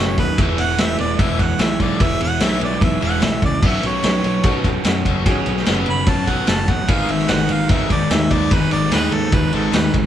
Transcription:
Already playing: F#1 B2 F#3 B3 C#4 F#4 B4 E5
0.00 B2 F#3 C#5
0.18 D#2 B2 F#3 B4, kick, ride
0.37 E1 E2 B2 E3 G#3 B3 E4 G#4 B4, kick, ride
0.41 E4
0.57 E1 E2 B2 F#5, ride
0.78 E1 E2 B2 E4 G#4 B4 E5, snare, clap, ride
0.98 E1 E2 B2 D5, ride
1.19 E1 E2 B2 E3 E4 G#4 B4 E5, kick, ride
1.39 E2 B2 F#5, kick, clap, ride
1.59 B1 E2 B2 E4 G#4 B4 E5, snare, clap, ride
1.80 B1 E2 B2 E3 D5, kick, ride
2.00 E1 E2 B2 E3 G#3 B3 E4 G#4 B4 E5, kick, ride
2.20 E1 E2 B2 F#5, ride
2.40 B1 E2 B2 E3 E4 G#4 C#5 E5, snare, clap, ride
2.60 B1 E2 B2, ride
2.64 D5
2.81 B1 E2 B2 E4 G#4 B4 E5, kick, ride
3.01 E1 E2 B2 E3 F#5, clap, ride
3.22 B1 E2 B2 E4 G#4 B4 E5, snare, clap, ride
3.42 C#2 E2 B2 D5, kick, ride
3.62 B1 B2 F#3 B3 C#4 F#4 B4, kick, crash
3.67 E5
3.83 B1 B2 F#3 C#5, ride
4.04 B1 B2 F#3 C#4 F#4 B4, snare, clap, ride
4.24 B1 B2 F#3, ride
4.43 B1 B2 F#3 B3 C#4 F#4 A4, kick, ride
4.64 B2 F#3, kick, clap, ride
4.85 F#2 B2 F#3 C#4 F#4 B4, snare, clap, ride
5.05 F#1 B2 F#3 B3, kick, ride
5.25 B1 B2 F#3 B3 C#4 F#4 G#4, kick, ride
5.46 B1 B2 F#3, ride
5.57 snare
5.66 F#1 B2 F#3 B3 C#4 F#4 B4, snare, clap, ride
5.86 F#1 B2 F#3 B5, ride
6.06 F#2 B2 F#3 C#4 F#4 C#5 A5, kick, ride
6.27 B1 B2 F#3 B3 F#5, kick, clap, ride
6.47 F#1 B2 F#3 C#4 F#4 B4 A5, snare, clap, ride
6.68 A1 B2 F#3 F#5, kick, ride
6.88 G#1 G#2 D#3 G#3 B3 D#4 G#4 B4 F5, kick, ride
7.09 G#1 G#2 D#3 E5, ride
7.19 snare
7.29 G#1 G#2 D#3 D#4 G#4 B4 F#5, snare, clap, ride
7.49 G#1 G#2 D#3 F5, ride
7.69 G#1 G#2 D#3 G#3 D#4 G#4 B4 E5, kick, ride
7.90 G#2 D#3 D5, kick, clap, ride
8.10 D#2 G#2 D#3 D#4 G#4 B4 E5, snare, clap, ride
8.31 D#2 G#2 D#3 G#3 D5, kick, ride
8.51 G#1 G#2 D#3 G#3 B3 D#4 G#4 B4, kick, ride
8.71 G#1 G#2 D#3 D5, ride
8.91 D#2 G#2 D#3 G#3 D#4 G#4 B4, snare, clap, ride
9.11 D#2 G#2 D#3 A4, ride
9.32 D#2 G#2 D#3 D#4 G#4 B4, kick, ride
9.52 G#1 G#2 D#3 G#3 A4, clap, ride
9.72 D#2 G#2 D#3 D#4 G#4 B4, snare, clap, ride
9.94 G#1 G#2 D#3, kick, ride

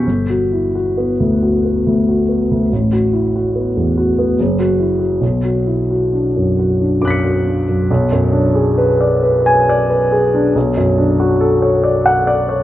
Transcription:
0.07 G1
0.30 F#4
0.53 E4
0.75 F#4
0.97 B3
1.20 D2
1.43 F#4
1.65 B3
1.86 D2
2.09 F#4
2.29 B3
2.51 D2
2.73 A1
2.92 F#4
3.13 E4
3.36 F#4
3.56 B3
3.77 E2
3.98 F#4
4.19 B3
4.39 F#1
4.59 F#4
4.80 E4
4.99 F#4
5.21 B1
5.44 F#4
5.67 E4
5.91 F#4
6.13 D4
6.36 F#2
6.59 F#4
6.81 D4
7.01 F#2 D6 F#6
7.08 B6 C#7
7.25 F#4
7.45 D4
7.68 F#2
7.91 B1
8.12 F#2
8.33 D4
8.55 G#4
8.78 B4
9.01 D5
9.23 B4
9.46 G#5
9.69 D5
9.90 B4
10.12 G#4
10.34 D4
10.55 B1
10.77 F#2
10.98 D4
11.20 F#4
11.41 A4
11.62 C#5
11.84 D5
12.06 F#5
12.27 D5
12.49 C#5

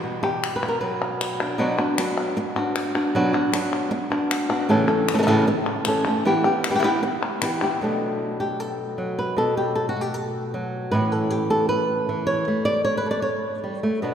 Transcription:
0.03 B2 F#4
0.23 G4, clap
0.44 clap
0.56 B4
0.63 B3, clap
0.68 A#4
0.81 F#3 B4
1.02 clap
1.21 clap
1.40 D4, clap
1.58 B2 F#3 B3 D4 F#4
1.78 B3 D4 F#4, clap
1.98 F#3 B3 D4 F#4, clap
2.18 clap
2.37 muted nylon-string guitar stroke
2.56 B3 D4 F#4, clap
2.76 clap
2.95 B3 D4 F#4, clap
3.15 B2 F#3 B3 D4 F#4
3.33 B3 D4 F#4, clap
3.52 F#3 B3 D4 F#4, clap
3.73 clap
3.91 muted nylon-string guitar stroke
4.10 B3 D4 F#4, clap
4.31 clap
4.49 B3 D4 F#4, clap
4.69 A2 C#3 E3 A3 C#4 A4
4.88 E3 A3 C#4 A4, clap
5.09 clap
5.14 C#3 E3 A3 C#4 A4
5.18 C#3 E3 A3 C#4 A4
5.23 C#3 E3 A3 C#4 A4
5.27 A2 C#3 E3 A3 C#4 A4, clap
5.47 muted nylon-string guitar stroke
5.66 clap
5.85 E3 A3 C#4 A4, clap
6.05 E3 A3 C#4 A4, clap
6.25 E3 B3 E4 G4
6.44 B3 E4 G4, clap
6.64 clap
6.70 E3 B3 E4 G4
6.74 E3 B3 E4 G4
6.79 E3 B3 E4 G4
6.83 E3 B3 E4 G4, clap
7.03 muted nylon-string guitar stroke
7.23 clap
7.42 E3 B3 E4 G4, clap
7.61 B3 E4 G4, clap
7.81 B2 F#3 A3 D4 A4
8.40 G4
8.60 A4
8.98 F#3
9.19 B4
9.36 B2 A4
9.57 G4
9.75 A4
9.89 F#4
9.97 A3
10.01 G4
10.14 A4
10.54 F#3
10.91 A2 E3 C#4 E4 B4
11.12 A4
11.30 G4
11.50 A4
11.69 B4
12.09 E3
12.27 C#5
12.48 A3
12.65 D5
12.85 C#5
12.97 B4
13.06 A4
13.11 D5
13.22 C#5
13.64 G3
13.83 A3
14.02 B2 B3 D4 B4

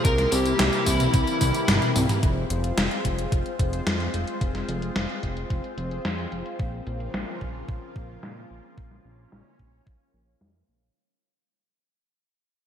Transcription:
0.05 C2 C3 E3 G3 A#3 C4 E4 G4 A#4, kick, closed hi-hat, tambourine
0.18 snare, closed hi-hat, tambourine
0.32 C2 G4, open hi-hat, tambourine
0.46 closed hi-hat, tambourine
0.59 C2, snare, closed hi-hat, tambourine
0.73 closed hi-hat, tambourine
0.86 C2 E4, kick, open hi-hat, tambourine
1.00 closed hi-hat, mid tom, tambourine
1.14 C2, kick, closed hi-hat, tambourine
1.27 closed hi-hat, tambourine
1.41 C2 C4 E4 G4 A#4, kick, open hi-hat, high tom, tambourine
1.55 closed hi-hat, tambourine
1.68 G1 C4 E4 G4 A#4, snare, closed hi-hat, mid tom, tambourine
1.82 closed hi-hat, mid tom, tambourine
1.96 C2, mid tom, open hi-hat, tambourine
2.09 closed hi-hat, mid tom, tambourine
2.23 F1 G#3 C4 F4 G#4 C5, kick, closed hi-hat
2.50 F1, closed hi-hat
2.64 closed hi-hat
2.77 F1, snare, closed hi-hat
2.91 closed hi-hat
3.05 F1, kick, closed hi-hat
3.19 closed hi-hat
3.32 F1, kick, closed hi-hat
3.46 closed hi-hat
3.59 F1 C4 F4 G#4 C5, kick, closed hi-hat
3.73 closed hi-hat
3.87 F2 C4 F4 G#4 C5, snare, closed hi-hat
4.00 closed hi-hat
4.14 F1, closed hi-hat
4.27 closed hi-hat
4.41 F1 C4 F4 G#4 C5, kick, closed hi-hat
4.55 snare, closed hi-hat
4.68 F1, closed hi-hat
4.82 closed hi-hat
4.96 F1, snare, closed hi-hat
5.10 closed hi-hat
5.23 F1, kick, closed hi-hat
5.37 closed hi-hat
5.50 F1, kick, closed hi-hat
5.64 closed hi-hat
5.78 F1 C4 F4 G#4 C5, closed hi-hat
5.91 closed hi-hat
6.05 F2 C4 F4 G#4 C5, snare, closed hi-hat
6.18 closed hi-hat
6.32 F1, closed hi-hat
6.46 closed hi-hat
6.59 A#1 C#3 F3 A#3 F4, kick, closed hi-hat
6.87 A#1, closed hi-hat
7.00 closed hi-hat
7.14 A#1, snare, closed hi-hat
7.28 closed hi-hat
7.41 A#1, kick, closed hi-hat
7.55 closed hi-hat
7.68 A#1, kick, closed hi-hat
7.82 closed hi-hat
7.96 A#1, kick, closed hi-hat
8.09 closed hi-hat
8.23 A#2, snare, closed hi-hat
8.37 closed hi-hat
8.50 A#1, closed hi-hat
8.64 closed hi-hat
8.78 A#1 C#4, kick, closed hi-hat
8.91 snare, closed hi-hat
9.05 A#1, closed hi-hat
9.19 closed hi-hat
9.32 A#1, snare, closed hi-hat
9.59 A#1, kick, closed hi-hat
9.73 closed hi-hat
9.87 A#1, kick, closed hi-hat
10.14 A#1, closed hi-hat
10.27 closed hi-hat
10.41 F2, snare
10.69 A#1

